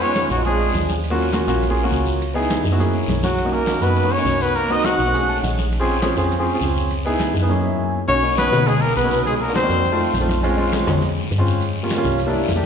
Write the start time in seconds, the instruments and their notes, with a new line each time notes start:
Already playing: fm bass F2
0.01 grand piano G#3 B3 D#4 F4, tenor saxophone C#4, trumpet C#5, high conga, maracas
0.15 high conga, short guiro, maracas
0.30 fm bass A#1, tenor saxophone F#3, trumpet F#4, short guiro, maracas
0.37 grand piano G#3 B3 D#4 F4
0.45 grand piano G#3 C4 D4 F4, tenor saxophone G#3, trumpet G#4, high conga, long guiro, maracas
0.60 high conga, maracas
0.74 fm bass D#2, high conga, short guiro, maracas
0.89 high conga, short guiro, maracas
1.03 high conga, long guiro, maracas
1.10 grand piano A#3 C#4 F4 F#4
1.18 high conga, maracas
1.32 grand piano A#3 C#4 F4 F#4, high conga, short guiro, maracas
1.47 fm bass A#1, grand piano A#3 C#4 F4 F#4, high conga, short guiro, maracas
1.62 high conga, long guiro, maracas
1.69 grand piano A#3 C#4 F4 G#4
1.78 high conga, maracas
1.83 grand piano A#3 C#4 F4 F#4
1.91 fm bass C#2, high conga, short guiro, maracas
2.06 high conga, short guiro, maracas
2.21 high conga, long guiro, maracas
2.34 grand piano B3 D#4 E4 G#4, high conga, maracas
2.50 high conga, short guiro, maracas
2.64 fm bass F#2, short guiro, maracas
2.71 grand piano B3 D#4 E4 F#4
2.79 grand piano A#3 C#4 E4 G#4, high conga, long guiro, maracas
2.94 high conga, maracas
3.08 fm bass B1, high conga, short guiro, maracas
3.23 tenor saxophone F#3, trumpet F#4, high conga, short guiro, maracas
3.38 high conga, long guiro, maracas
3.45 grand piano A#3 C#4 D#4 F#4
3.53 tenor saxophone A#3, trumpet A#4, high conga, maracas
3.66 grand piano A#3 C#4 D#4 F#4, high conga, short guiro, maracas
3.81 fm bass F#2, grand piano A#3 C#4 D#4 F#4, tenor saxophone B3, trumpet B4, high conga, short guiro, maracas
3.97 high conga, long guiro, maracas
4.03 grand piano A#3 C#4 D#4 F#4
4.11 tenor saxophone C#4, trumpet C#5, high conga, maracas
4.17 grand piano A#3 C#4 D#4 F#4
4.25 fm bass C2, high conga, short guiro, maracas
4.41 tenor saxophone B3, trumpet B4, high conga, short guiro, maracas
4.55 tenor saxophone A#3, trumpet A#4, high conga, long guiro, maracas
4.69 grand piano A#3 C4 D#4 F#4, tenor saxophone D#4, trumpet D#5, high conga, maracas
4.84 tenor saxophone F#4, trumpet F#5, high conga, short guiro, maracas
4.99 fm bass B1, short guiro, maracas
5.06 grand piano A#3 C4 D#4 F#4
5.13 grand piano A3 C#4 D#4 G#4, high conga, long guiro, maracas
5.28 grand piano A5, high conga, maracas
5.36 grand piano F#5
5.43 fm bass A#1, grand piano D#5, high conga, short guiro, maracas
5.58 high conga, short guiro, maracas
5.72 high conga, long guiro, maracas
5.80 grand piano C4 C#4 F4 G#4
5.87 high conga, maracas
6.01 grand piano C4 C#4 F4 G#4, high conga, short guiro, maracas
6.17 fm bass F2, grand piano C4 C#4 F4 G#4, high conga, short guiro, maracas
6.31 high conga, long guiro, maracas
6.38 grand piano C4 C#4 F4 G#4
6.46 high conga, maracas
6.54 grand piano C4 C#4 F4 G#4
6.61 fm bass C#2, high conga, short guiro, maracas
6.75 high conga, short guiro, maracas
6.90 high conga, long guiro, maracas
7.05 grand piano B3 D#4 E4 G#4, high conga, maracas
7.20 high conga, short guiro, maracas
7.34 fm bass F#2, short guiro, maracas
7.42 grand piano B3 D#4 E4 G#4
7.49 grand piano F#2 A#3 C#4 E4 G#4
7.65 grand piano E5
7.78 grand piano G#5
8.07 fm bass B1, grand piano A#3 C#4 D#4 F#4, tenor saxophone C#4, trumpet C#5, high conga, long guiro, maracas
8.23 grand piano A#3 C#4 D#4 F#4, high conga, maracas
8.37 tenor saxophone B3, trumpet B4, high conga, short guiro, maracas
8.52 fm bass B2, high conga, low conga, short guiro, maracas
8.67 tenor saxophone G#3, trumpet G#4, high conga, low conga, long guiro, maracas
8.81 tenor saxophone A#3, trumpet A#4, high conga, maracas
8.96 fm bass C2, tenor saxophone B3, trumpet B4, high conga, short guiro, maracas
9.03 grand piano A#3 C#4 D#4 F#4
9.11 high conga, short guiro, maracas
9.26 tenor saxophone G#3, trumpet G#4, high conga, long guiro, maracas
9.37 tenor saxophone G#3, trumpet G#4 A#4, high conga
9.41 tenor saxophone A#3, maracas
9.47 grand piano A#3 D4 D#4 F#4
9.55 tenor saxophone C4, trumpet C5, high conga, short guiro, maracas
9.62 grand piano A#3 D4 D#4 F#4
9.70 fm bass F2, short guiro, maracas
9.85 high conga, long guiro, maracas
9.92 grand piano A3 C4 D#4 F4
10.00 high conga, maracas
10.14 fm bass A#1, high conga, short guiro, maracas
10.20 grand piano A3 C4 D#4 F4
10.29 high conga, short guiro, maracas
10.43 grand piano G#3 C4 C#4 F4, high conga, long guiro, maracas
10.57 grand piano G#3 C4 C#4 F4, high conga, maracas
10.73 high conga, short guiro, maracas
10.87 fm bass F2, high conga, low conga, short guiro, maracas
11.02 high conga, long guiro, maracas
11.17 high conga, maracas
11.31 fm bass G2, high conga, short guiro, maracas
11.38 grand piano G#3 C4 C#4 F4
11.46 high conga, short guiro, maracas
11.61 high conga, long guiro, maracas
11.76 high conga, maracas
11.83 grand piano G3 A#3 C#4 F4
11.90 high conga, short guiro, maracas
11.96 grand piano G3 A#3 C#4 F4
12.04 fm bass C2, short guiro, maracas
12.19 high conga, long guiro, maracas
12.26 grand piano G3 A#3 D4 E4
12.34 high conga, maracas
12.48 fm bass F2, high conga, short guiro, maracas
12.55 grand piano G3 A#3 D4 G4